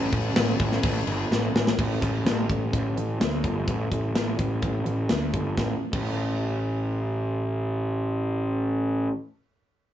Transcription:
0.12 picked electric bass A1, kick, crash
0.36 picked electric bass A1, snare, crash
0.60 picked electric bass A1, kick, crash
0.72 snare
0.83 picked electric bass A1, kick, crash
1.07 picked electric bass G1, crash
1.31 picked electric bass A1, snare
1.54 picked electric bass A1, snare
1.67 snare
1.79 picked electric bass A1, kick, crash
2.02 picked electric bass A1, kick, closed hi-hat
2.26 picked electric bass A1, snare, closed hi-hat
2.50 picked electric bass A1, kick, closed hi-hat
2.73 picked electric bass A1, kick, closed hi-hat
2.96 picked electric bass A1, closed hi-hat
3.20 picked electric bass D2, snare, closed hi-hat
3.44 picked electric bass G1, kick, closed hi-hat
3.67 picked electric bass A1, kick, closed hi-hat
3.91 picked electric bass A1, kick, closed hi-hat
4.14 picked electric bass A1, snare, closed hi-hat
4.39 picked electric bass A1, kick, closed hi-hat
4.62 picked electric bass A1, kick, closed hi-hat
4.85 picked electric bass A1, closed hi-hat
5.09 picked electric bass D2, snare, closed hi-hat
5.34 picked electric bass G1, kick, closed hi-hat
5.57 picked electric bass A1, kick, snare
5.93 picked electric bass A1, kick, crash

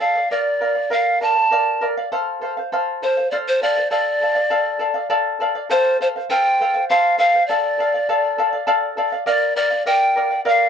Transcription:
0.00 charango A4 D5 F5, pan flute F5
0.15 charango D5 F5
0.31 charango A#4 D5 F5, pan flute D5
0.60 charango A#4 D5 F5
0.75 charango D5 F5
0.90 charango A#4 D5 F5, pan flute F5
1.21 charango A#4 D5 F5, pan flute A5
1.35 charango D5 F5
1.51 charango A#4 D5 F5
1.81 charango A#4 D5 F5
1.97 charango D5 F5
2.12 charango A4 C5 F5
2.41 charango A4 C5 F5
2.57 charango C5 F5
2.72 charango A4 C5 F5
3.02 charango A4 C5 F5, pan flute C5
3.17 charango C5 F5
3.31 charango A4 C5 F5, pan flute D5
3.48 pan flute C5
3.62 charango A4 C5 F5, pan flute D5
3.77 charango C5 F5
3.91 charango A4 D5 F5, pan flute D5
4.22 charango A4 D5 F5
4.35 charango D5 F5
4.50 charango A4 D5 F5
4.79 charango A4 D5 F5
4.94 charango D5 F5
5.10 charango A4 D5 F5
5.40 charango A4 D5 F5
5.55 charango D5 F5
5.70 charango A4 C5 F5, pan flute C5
6.01 charango A4 C5 F5, pan flute C5
6.16 charango C5 F5
6.30 charango A4 C5 F5, pan flute G5
6.61 charango A4 C5 F5
6.74 charango C5 F5
6.90 charango A4 C5 F5, pan flute F5
7.18 charango A4 C5 F5, pan flute F5
7.34 charango C5 F5
7.47 charango A4 D5 F5, pan flute D5
7.79 charango A4 D5 F5
7.94 charango D5 F5
8.09 charango A4 D5 F5
8.38 charango A4 D5 F5
8.53 charango D5 F5
8.67 charango A4 D5 F5
8.97 charango A4 D5 F5
9.12 charango D5 F5
9.26 charango A#4 D5 F5, pan flute D5
9.56 charango A#4 D5 F5, pan flute D5
9.70 charango D5 F5
9.86 charango A#4 D5 F5, pan flute G5
10.16 charango A#4 D5 F5
10.31 charango D5 F5
10.45 charango A#4 D5 F5, pan flute F5

